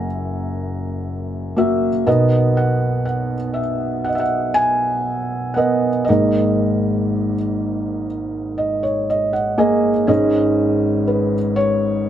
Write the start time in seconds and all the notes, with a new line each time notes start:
Already playing: F#1 F#2 A#3 F#4 A#4 E5 F#5 G#5 A#5
1.56 A#3 F#4 E5
2.06 B1 B2 B3 A#4 D#5
2.57 F#5
3.05 F#5
3.54 E5
4.04 F#5
4.09 D#5
4.15 E5
4.20 F#5
4.54 G#5
5.54 B3 A#4 D#5 F#5
6.05 A#3 D#5
6.09 G#1 G#2 G#4 A#4 D#5
8.58 D#5
8.83 C#5
9.10 D#5
9.33 F#5
9.58 A#3 G#4 D#5 G#5
10.07 G#1 G#2 C#4 G#4 D#5
11.08 B4
11.56 C#5